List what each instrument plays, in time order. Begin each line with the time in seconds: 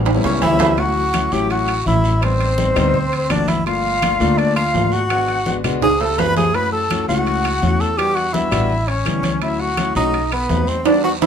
Already playing: upright bass A1
0.06 high conga, high timbale, low agogo, long guiro
0.15 grand piano G3 B3 C#4 E4
0.24 upright bass C#2, tenor saxophone C#4, flute C#5, high conga, low timbale
0.42 upright bass D2, tenor saxophone E4, flute E5, high conga, low timbale, low agogo, short guiro, claves
0.51 grand piano G3 B3 C#4 E4
0.59 high conga, low timbale, short guiro
0.77 grand piano F#3 A3 C#4 E4, tenor saxophone F#4, flute F#5, high conga, high timbale, long guiro
0.96 high conga
1.14 grand piano F#3 A3 C#4 E4, high conga, high timbale, short guiro, claves
1.32 upright bass A1, grand piano F#3 A3 C#4 E4, tenor saxophone G4, flute G5, high conga, short guiro
1.50 tenor saxophone F#4, flute F#5, high conga, high timbale, long guiro
1.68 high conga, high timbale, claves
1.85 upright bass A1, grand piano F#3 A3 C#4 E4, tenor saxophone E4, flute E5, high conga, short guiro
2.04 short guiro
2.21 grand piano G3 B3 C4 D#4, tenor saxophone C4, flute C5, high conga, high timbale, long guiro, claves
2.40 high conga, high timbale
2.58 grand piano G3 B3 C4 D#4, high conga, short guiro
2.75 upright bass D2, grand piano G3 B3 C4 D#4, high conga, low conga, high timbale, short guiro, claves
2.94 high conga, low conga, long guiro
3.12 high conga, high timbale
3.30 upright bass G1, grand piano A3 A#3 C4 F#4, tenor saxophone D4, flute D5, high conga, high timbale, short guiro, claves
3.48 tenor saxophone E4, flute E5, high conga, high timbale, short guiro
3.66 grand piano A3 A#3 D4 F4, tenor saxophone F4, flute F5, high conga, high timbale, long guiro
3.84 high conga
4.02 grand piano A3 A#3 D4 F4, high conga, high timbale, short guiro, claves
4.20 upright bass D2, grand piano A3 A#3 D4 F4, high conga, short guiro
4.38 tenor saxophone D4, flute D5, high conga, high timbale, long guiro
4.56 tenor saxophone F4, flute F5, high conga, high timbale, claves
4.74 upright bass G#1, grand piano A3 A#3 D4 F4, high conga, low timbale, short guiro
4.92 tenor saxophone F#4, flute F#5, high conga, short guiro
5.10 grand piano G#3 B3 D4 F#4, high conga, high timbale, long guiro, claves
5.28 high conga, high timbale
5.46 grand piano G#3 B3 D4 F#4, high conga, short guiro
5.64 upright bass C#2, grand piano G#3 B3 D4 F#4, high conga, low conga, high timbale, short guiro, claves
5.82 tenor saxophone G#4, flute G#5, high conga, low conga, high timbale, long guiro
6.00 tenor saxophone A4, flute A5, high conga, low timbale
6.18 upright bass F#2, grand piano G#3 B3 D4 F4, tenor saxophone B4, flute B5, high conga, low timbale, short guiro, claves
6.36 tenor saxophone G#4, flute G#5, high conga, low timbale, short guiro
6.54 grand piano A3 C#4 E4 F#4, tenor saxophone B4, flute B5, high conga, high timbale, long guiro
6.72 tenor saxophone A4, flute A5, high conga
6.91 grand piano A3 C#4 E4 F#4, high conga, high timbale, short guiro, claves
7.08 upright bass C#2, grand piano A3 C#4 E4 F#4, tenor saxophone F#4, flute F#5, high conga, short guiro
7.26 high conga, high timbale, long guiro
7.44 high conga, high timbale, claves
7.62 upright bass E2, grand piano A3 C#4 E4 F#4, high conga, short guiro
7.80 tenor saxophone A4, flute A5, high conga, short guiro
7.97 grand piano G3 B3 D4 F#4, tenor saxophone G4, flute G5, high conga, high timbale, long guiro, claves
8.15 tenor saxophone F#4, flute F#5, high conga, high timbale
8.33 grand piano G3 B3 D4 F#4, tenor saxophone E4, flute E5, high conga, short guiro
8.51 upright bass A1, grand piano G3 B3 D4 F#4, high conga, low conga, high timbale, short guiro, claves
8.70 high conga, long guiro
8.87 tenor saxophone C#4, flute C#5, high conga, high timbale
9.06 upright bass D2, grand piano G3 B3 C#4 E4, high conga, high timbale, short guiro, claves
9.23 high conga, high timbale, short guiro
9.42 grand piano F#3 A3 C#4 E4, tenor saxophone E4, flute E5, high conga, high timbale, long guiro
9.59 tenor saxophone F#4, flute F#5, high conga
9.77 grand piano F#3 A3 C#4 E4, high conga, high timbale, short guiro, claves
9.95 upright bass B1, grand piano F#3 A3 C#4 F#4, tenor saxophone D#4, flute D#5, high conga, short guiro
10.14 high conga, high timbale, long guiro
10.32 tenor saxophone B3, flute B4, high conga, high timbale, claves
10.49 upright bass E2, grand piano F#3 A3 C4 D#4, high conga, low timbale, short guiro
10.67 tenor saxophone C4, flute C5, high conga, short guiro
10.85 grand piano G3 B3 D4 F#4, tenor saxophone D4, flute D5, high conga, high timbale, long guiro, claves
11.03 tenor saxophone F#4, flute F#5, high conga, high timbale
11.21 grand piano G3 B3 D4 F#4, tenor saxophone E4, flute E5, high conga, high timbale, short guiro